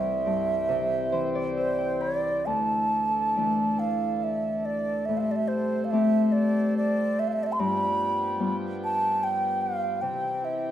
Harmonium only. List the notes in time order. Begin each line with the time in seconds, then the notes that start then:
Already playing: E3 C4 G4
2.44 E3 D4 A4
5.07 G3 C4
7.59 F3 B3 G4
10.03 C3 E3 G4